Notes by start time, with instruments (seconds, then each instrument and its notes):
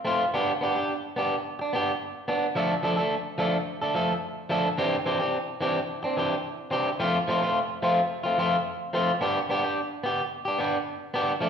0.05 clean electric guitar A3 C4 F4
0.34 clean electric guitar B3 D4 G4
0.61 clean electric guitar B3 D4 G4
0.75 clean electric guitar D4 G4
1.16 clean electric guitar B3 D4 G4
1.59 clean electric guitar D4, muted clean electric guitar stroke
1.73 clean electric guitar B3 D4 G4
2.28 clean electric guitar B3 D4, muted clean electric guitar stroke
2.55 clean electric guitar F3 A3 D4 A4
2.83 clean electric guitar F3 A3 D4 A4
2.97 clean electric guitar A3 D4 A4
3.38 clean electric guitar F3 A3 D4 A4
3.82 clean electric guitar A3 D4 A4
3.94 clean electric guitar F3 A3 A4
4.49 clean electric guitar F3 A3 D4 A4
4.78 clean electric guitar E3 C4 D4 G4
5.06 clean electric guitar E3 C4 D4 G4
5.20 clean electric guitar C4 D4 G4
5.61 clean electric guitar E3 C4 D4 G4
6.03 clean electric guitar C4 D4, muted clean electric guitar stroke
6.17 clean electric guitar E3 C4 D4 G4
6.71 clean electric guitar C4 D4 G4, muted clean electric guitar stroke
7.00 clean electric guitar F3 A3 C4 F4
7.28 clean electric guitar F3 A3 C4 F4
7.42 clean electric guitar A3 C4 F4
7.82 clean electric guitar F3 A3 C4 F4
8.23 clean electric guitar A3 C4 F4
8.38 clean electric guitar F3 A3 C4 F4
8.93 clean electric guitar F3 A3 C4 F4
9.21 clean electric guitar B3 D4 G4
9.49 clean electric guitar B3 D4 G4
9.64 clean electric guitar D4 G4
10.04 clean electric guitar B3 G4
10.45 clean electric guitar D4 G4
10.58 clean electric guitar B3 D4 G4
11.14 clean electric guitar B3 D4 G4
11.41 clean electric guitar F3 A3 D4